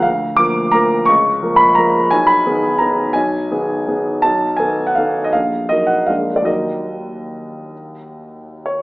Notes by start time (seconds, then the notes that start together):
0.02 D2 F5
0.37 F3 A#3 A#4 D6
0.72 F3 A#3 A#4 A#5
1.05 C#2 C#6
1.42 F3 A#3 A#4
1.56 B5
1.75 F3 A#3 A#4 A#5
2.11 B1 G#5
2.27 B5
2.46 D#3 B3 G#4
2.78 D#3 B3 G#4 A#5
3.13 B1 G#5
3.51 D#3 B3 G#4
3.88 D#3 B3 G#4
4.22 B1 A5
4.57 D#3 B3 A4 G#5
4.87 F#5
4.95 D#3 B3 A4 F5
5.24 D#5
5.33 A#1 F5
5.69 F#3 D#4 A#4 D#5
5.87 F#5
6.06 A#1 G#3 D4 A#4 F5
6.36 D5
6.42 D#2 F#3 D#4 A#4 D#5
8.66 C#5